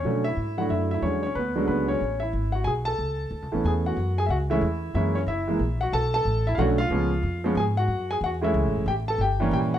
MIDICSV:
0, 0, Header, 1, 3, 480
1, 0, Start_track
1, 0, Key_signature, 3, "major"
1, 0, Tempo, 326619
1, 69, Time_signature, 3, 2, 24, 8
1, 14383, End_track
2, 0, Start_track
2, 0, Title_t, "Grand piano"
2, 0, Program_c, 0, 0
2, 0, Note_on_c, 0, 73, 74
2, 75, Note_on_c, 0, 50, 56
2, 80, Note_on_c, 0, 54, 52
2, 88, Note_on_c, 0, 57, 54
2, 102, Note_on_c, 0, 61, 60
2, 343, Note_off_c, 0, 50, 0
2, 345, Note_off_c, 0, 54, 0
2, 350, Note_off_c, 0, 57, 0
2, 357, Note_off_c, 0, 61, 0
2, 359, Note_on_c, 0, 76, 89
2, 377, Note_off_c, 0, 73, 0
2, 413, Note_on_c, 0, 64, 60
2, 811, Note_off_c, 0, 76, 0
2, 840, Note_off_c, 0, 64, 0
2, 846, Note_on_c, 0, 50, 50
2, 852, Note_on_c, 0, 78, 75
2, 856, Note_on_c, 0, 54, 49
2, 866, Note_on_c, 0, 57, 46
2, 872, Note_on_c, 0, 64, 55
2, 901, Note_on_c, 0, 66, 61
2, 1017, Note_off_c, 0, 78, 0
2, 1031, Note_on_c, 0, 76, 77
2, 1044, Note_off_c, 0, 66, 0
2, 1058, Note_off_c, 0, 64, 0
2, 1080, Note_on_c, 0, 64, 61
2, 1317, Note_off_c, 0, 76, 0
2, 1336, Note_off_c, 0, 64, 0
2, 1339, Note_on_c, 0, 76, 74
2, 1386, Note_on_c, 0, 64, 63
2, 1471, Note_off_c, 0, 50, 0
2, 1477, Note_off_c, 0, 54, 0
2, 1481, Note_off_c, 0, 57, 0
2, 1505, Note_on_c, 0, 50, 46
2, 1507, Note_on_c, 0, 54, 42
2, 1507, Note_on_c, 0, 73, 76
2, 1514, Note_on_c, 0, 56, 40
2, 1519, Note_off_c, 0, 76, 0
2, 1527, Note_off_c, 0, 64, 0
2, 1530, Note_on_c, 0, 61, 49
2, 1778, Note_off_c, 0, 50, 0
2, 1779, Note_off_c, 0, 54, 0
2, 1783, Note_off_c, 0, 56, 0
2, 1784, Note_off_c, 0, 73, 0
2, 1791, Note_off_c, 0, 61, 0
2, 1806, Note_on_c, 0, 73, 74
2, 1856, Note_on_c, 0, 61, 57
2, 1988, Note_on_c, 0, 71, 77
2, 1992, Note_off_c, 0, 73, 0
2, 2001, Note_off_c, 0, 61, 0
2, 2041, Note_on_c, 0, 59, 53
2, 2287, Note_on_c, 0, 50, 66
2, 2289, Note_on_c, 0, 54, 57
2, 2307, Note_on_c, 0, 56, 59
2, 2314, Note_on_c, 0, 61, 64
2, 2435, Note_off_c, 0, 71, 0
2, 2463, Note_off_c, 0, 59, 0
2, 2464, Note_on_c, 0, 71, 75
2, 2504, Note_on_c, 0, 59, 61
2, 2747, Note_off_c, 0, 71, 0
2, 2768, Note_off_c, 0, 59, 0
2, 2768, Note_on_c, 0, 73, 76
2, 2784, Note_off_c, 0, 61, 0
2, 2806, Note_on_c, 0, 61, 63
2, 2912, Note_off_c, 0, 50, 0
2, 2913, Note_off_c, 0, 54, 0
2, 2922, Note_off_c, 0, 56, 0
2, 3216, Note_off_c, 0, 73, 0
2, 3230, Note_on_c, 0, 76, 81
2, 3236, Note_off_c, 0, 61, 0
2, 3273, Note_on_c, 0, 64, 65
2, 3687, Note_off_c, 0, 76, 0
2, 3707, Note_on_c, 0, 78, 80
2, 3710, Note_off_c, 0, 64, 0
2, 3749, Note_on_c, 0, 66, 57
2, 3885, Note_off_c, 0, 78, 0
2, 3885, Note_on_c, 0, 80, 87
2, 3907, Note_off_c, 0, 66, 0
2, 3929, Note_on_c, 0, 68, 66
2, 3958, Note_off_c, 0, 80, 0
2, 4003, Note_off_c, 0, 68, 0
2, 4192, Note_on_c, 0, 81, 93
2, 4227, Note_on_c, 0, 69, 61
2, 5173, Note_on_c, 0, 52, 58
2, 5181, Note_on_c, 0, 57, 51
2, 5191, Note_on_c, 0, 59, 51
2, 5201, Note_on_c, 0, 61, 60
2, 5372, Note_on_c, 0, 80, 77
2, 5400, Note_on_c, 0, 68, 62
2, 5445, Note_off_c, 0, 80, 0
2, 5473, Note_off_c, 0, 68, 0
2, 5584, Note_off_c, 0, 81, 0
2, 5601, Note_off_c, 0, 69, 0
2, 5677, Note_on_c, 0, 78, 80
2, 5691, Note_on_c, 0, 66, 61
2, 5796, Note_off_c, 0, 52, 0
2, 5800, Note_off_c, 0, 57, 0
2, 5805, Note_off_c, 0, 59, 0
2, 5810, Note_off_c, 0, 61, 0
2, 6112, Note_off_c, 0, 78, 0
2, 6119, Note_off_c, 0, 66, 0
2, 6147, Note_on_c, 0, 80, 85
2, 6165, Note_on_c, 0, 68, 66
2, 6204, Note_off_c, 0, 80, 0
2, 6218, Note_off_c, 0, 68, 0
2, 6266, Note_on_c, 0, 76, 66
2, 6311, Note_off_c, 0, 76, 0
2, 6324, Note_on_c, 0, 78, 84
2, 6340, Note_on_c, 0, 66, 67
2, 6398, Note_off_c, 0, 78, 0
2, 6413, Note_off_c, 0, 66, 0
2, 6611, Note_on_c, 0, 52, 69
2, 6621, Note_on_c, 0, 56, 60
2, 6625, Note_on_c, 0, 57, 62
2, 6625, Note_on_c, 0, 76, 86
2, 6641, Note_on_c, 0, 61, 78
2, 6650, Note_on_c, 0, 64, 67
2, 6772, Note_off_c, 0, 52, 0
2, 6778, Note_off_c, 0, 56, 0
2, 6780, Note_off_c, 0, 57, 0
2, 6788, Note_off_c, 0, 61, 0
2, 7245, Note_off_c, 0, 64, 0
2, 7252, Note_off_c, 0, 76, 0
2, 7268, Note_on_c, 0, 52, 59
2, 7272, Note_on_c, 0, 56, 59
2, 7274, Note_on_c, 0, 76, 83
2, 7286, Note_on_c, 0, 58, 55
2, 7295, Note_on_c, 0, 61, 68
2, 7295, Note_on_c, 0, 64, 69
2, 7540, Note_off_c, 0, 52, 0
2, 7542, Note_off_c, 0, 56, 0
2, 7549, Note_off_c, 0, 58, 0
2, 7554, Note_off_c, 0, 61, 0
2, 7563, Note_off_c, 0, 64, 0
2, 7572, Note_on_c, 0, 73, 78
2, 7582, Note_off_c, 0, 76, 0
2, 7598, Note_on_c, 0, 61, 63
2, 7646, Note_off_c, 0, 73, 0
2, 7671, Note_off_c, 0, 61, 0
2, 7758, Note_on_c, 0, 76, 85
2, 7782, Note_on_c, 0, 64, 67
2, 8046, Note_on_c, 0, 52, 57
2, 8057, Note_on_c, 0, 56, 59
2, 8058, Note_off_c, 0, 64, 0
2, 8069, Note_on_c, 0, 58, 55
2, 8080, Note_on_c, 0, 64, 62
2, 8210, Note_off_c, 0, 52, 0
2, 8215, Note_off_c, 0, 56, 0
2, 8221, Note_off_c, 0, 58, 0
2, 8227, Note_off_c, 0, 64, 0
2, 8533, Note_on_c, 0, 78, 88
2, 8558, Note_off_c, 0, 76, 0
2, 8564, Note_on_c, 0, 66, 66
2, 8699, Note_off_c, 0, 78, 0
2, 8715, Note_off_c, 0, 66, 0
2, 8720, Note_on_c, 0, 81, 99
2, 8740, Note_on_c, 0, 69, 74
2, 9002, Note_off_c, 0, 81, 0
2, 9006, Note_off_c, 0, 69, 0
2, 9024, Note_on_c, 0, 81, 98
2, 9051, Note_on_c, 0, 69, 79
2, 9479, Note_off_c, 0, 69, 0
2, 9508, Note_on_c, 0, 76, 82
2, 9512, Note_off_c, 0, 81, 0
2, 9533, Note_on_c, 0, 64, 67
2, 9625, Note_off_c, 0, 76, 0
2, 9626, Note_on_c, 0, 77, 76
2, 9638, Note_off_c, 0, 64, 0
2, 9670, Note_off_c, 0, 77, 0
2, 9677, Note_on_c, 0, 50, 72
2, 9680, Note_on_c, 0, 78, 96
2, 9681, Note_on_c, 0, 54, 63
2, 9691, Note_on_c, 0, 57, 64
2, 9699, Note_on_c, 0, 61, 79
2, 9713, Note_on_c, 0, 66, 71
2, 9754, Note_off_c, 0, 78, 0
2, 9786, Note_off_c, 0, 66, 0
2, 9944, Note_off_c, 0, 50, 0
2, 9946, Note_off_c, 0, 54, 0
2, 9951, Note_off_c, 0, 57, 0
2, 9955, Note_off_c, 0, 61, 0
2, 9968, Note_on_c, 0, 77, 102
2, 9995, Note_on_c, 0, 65, 72
2, 10153, Note_on_c, 0, 53, 61
2, 10157, Note_on_c, 0, 56, 54
2, 10167, Note_on_c, 0, 59, 53
2, 10173, Note_on_c, 0, 61, 67
2, 10423, Note_off_c, 0, 53, 0
2, 10424, Note_off_c, 0, 56, 0
2, 10429, Note_off_c, 0, 59, 0
2, 10432, Note_off_c, 0, 61, 0
2, 10871, Note_off_c, 0, 77, 0
2, 10885, Note_off_c, 0, 65, 0
2, 10936, Note_on_c, 0, 53, 68
2, 10942, Note_on_c, 0, 56, 64
2, 10957, Note_on_c, 0, 59, 61
2, 10958, Note_on_c, 0, 61, 75
2, 11095, Note_off_c, 0, 53, 0
2, 11098, Note_off_c, 0, 56, 0
2, 11105, Note_off_c, 0, 59, 0
2, 11106, Note_off_c, 0, 61, 0
2, 11130, Note_on_c, 0, 80, 89
2, 11164, Note_on_c, 0, 68, 69
2, 11204, Note_off_c, 0, 80, 0
2, 11237, Note_off_c, 0, 68, 0
2, 11423, Note_on_c, 0, 78, 99
2, 11450, Note_on_c, 0, 66, 65
2, 11879, Note_off_c, 0, 66, 0
2, 11912, Note_off_c, 0, 78, 0
2, 11913, Note_on_c, 0, 80, 91
2, 11939, Note_on_c, 0, 68, 65
2, 11987, Note_off_c, 0, 80, 0
2, 12009, Note_off_c, 0, 68, 0
2, 12106, Note_on_c, 0, 78, 89
2, 12137, Note_on_c, 0, 66, 69
2, 12180, Note_off_c, 0, 78, 0
2, 12210, Note_off_c, 0, 66, 0
2, 12367, Note_on_c, 0, 52, 64
2, 12377, Note_on_c, 0, 56, 66
2, 12381, Note_on_c, 0, 57, 59
2, 12392, Note_on_c, 0, 61, 73
2, 12409, Note_on_c, 0, 76, 84
2, 12439, Note_on_c, 0, 64, 64
2, 12993, Note_off_c, 0, 52, 0
2, 12998, Note_off_c, 0, 56, 0
2, 13000, Note_off_c, 0, 57, 0
2, 13006, Note_off_c, 0, 61, 0
2, 13021, Note_off_c, 0, 64, 0
2, 13046, Note_on_c, 0, 79, 91
2, 13069, Note_off_c, 0, 76, 0
2, 13081, Note_on_c, 0, 67, 68
2, 13120, Note_off_c, 0, 79, 0
2, 13155, Note_off_c, 0, 67, 0
2, 13346, Note_on_c, 0, 81, 89
2, 13377, Note_on_c, 0, 69, 72
2, 13506, Note_off_c, 0, 81, 0
2, 13523, Note_off_c, 0, 69, 0
2, 13538, Note_on_c, 0, 79, 85
2, 13566, Note_on_c, 0, 67, 69
2, 13813, Note_on_c, 0, 52, 80
2, 13821, Note_on_c, 0, 55, 69
2, 13835, Note_on_c, 0, 58, 70
2, 13840, Note_on_c, 0, 61, 83
2, 13988, Note_off_c, 0, 67, 0
2, 13989, Note_off_c, 0, 79, 0
2, 14011, Note_on_c, 0, 79, 88
2, 14044, Note_on_c, 0, 67, 63
2, 14085, Note_off_c, 0, 79, 0
2, 14118, Note_off_c, 0, 67, 0
2, 14315, Note_on_c, 0, 78, 86
2, 14383, Note_off_c, 0, 52, 0
2, 14383, Note_off_c, 0, 55, 0
2, 14383, Note_off_c, 0, 58, 0
2, 14383, Note_off_c, 0, 61, 0
2, 14383, Note_off_c, 0, 78, 0
2, 14383, End_track
3, 0, Start_track
3, 0, Title_t, "Upright bass"
3, 0, Program_c, 1, 32
3, 53, Note_on_c, 1, 47, 72
3, 527, Note_off_c, 1, 47, 0
3, 537, Note_on_c, 1, 44, 75
3, 1009, Note_off_c, 1, 44, 0
3, 1017, Note_on_c, 1, 42, 77
3, 1488, Note_off_c, 1, 42, 0
3, 1499, Note_on_c, 1, 40, 73
3, 1970, Note_off_c, 1, 40, 0
3, 1985, Note_on_c, 1, 38, 77
3, 2453, Note_off_c, 1, 38, 0
3, 2463, Note_on_c, 1, 37, 78
3, 2932, Note_off_c, 1, 37, 0
3, 2950, Note_on_c, 1, 33, 73
3, 3416, Note_off_c, 1, 33, 0
3, 3425, Note_on_c, 1, 32, 78
3, 3890, Note_off_c, 1, 32, 0
3, 3899, Note_on_c, 1, 35, 75
3, 4370, Note_off_c, 1, 35, 0
3, 4388, Note_on_c, 1, 37, 71
3, 4851, Note_off_c, 1, 37, 0
3, 4860, Note_on_c, 1, 38, 77
3, 5025, Note_off_c, 1, 38, 0
3, 5025, Note_on_c, 1, 37, 50
3, 5184, Note_off_c, 1, 37, 0
3, 5192, Note_on_c, 1, 33, 55
3, 5341, Note_off_c, 1, 33, 0
3, 5348, Note_on_c, 1, 40, 82
3, 5815, Note_off_c, 1, 40, 0
3, 5829, Note_on_c, 1, 42, 79
3, 6289, Note_off_c, 1, 42, 0
3, 6298, Note_on_c, 1, 37, 83
3, 6770, Note_off_c, 1, 37, 0
3, 6778, Note_on_c, 1, 40, 83
3, 7250, Note_off_c, 1, 40, 0
3, 7263, Note_on_c, 1, 42, 83
3, 7732, Note_off_c, 1, 42, 0
3, 7738, Note_on_c, 1, 30, 83
3, 8210, Note_off_c, 1, 30, 0
3, 8218, Note_on_c, 1, 34, 88
3, 8689, Note_off_c, 1, 34, 0
3, 8707, Note_on_c, 1, 35, 84
3, 9174, Note_off_c, 1, 35, 0
3, 9187, Note_on_c, 1, 33, 84
3, 9654, Note_off_c, 1, 33, 0
3, 9666, Note_on_c, 1, 35, 92
3, 10134, Note_off_c, 1, 35, 0
3, 10140, Note_on_c, 1, 37, 79
3, 10610, Note_off_c, 1, 37, 0
3, 10621, Note_on_c, 1, 41, 82
3, 11091, Note_off_c, 1, 41, 0
3, 11097, Note_on_c, 1, 44, 91
3, 11569, Note_off_c, 1, 44, 0
3, 11577, Note_on_c, 1, 42, 77
3, 12050, Note_off_c, 1, 42, 0
3, 12062, Note_on_c, 1, 40, 89
3, 12532, Note_off_c, 1, 40, 0
3, 12552, Note_on_c, 1, 37, 92
3, 12709, Note_off_c, 1, 37, 0
3, 12709, Note_on_c, 1, 33, 52
3, 12860, Note_off_c, 1, 33, 0
3, 12868, Note_on_c, 1, 30, 65
3, 13009, Note_off_c, 1, 30, 0
3, 13017, Note_on_c, 1, 33, 85
3, 13487, Note_off_c, 1, 33, 0
3, 13496, Note_on_c, 1, 31, 86
3, 13970, Note_off_c, 1, 31, 0
3, 13979, Note_on_c, 1, 34, 91
3, 14383, Note_off_c, 1, 34, 0
3, 14383, End_track
0, 0, End_of_file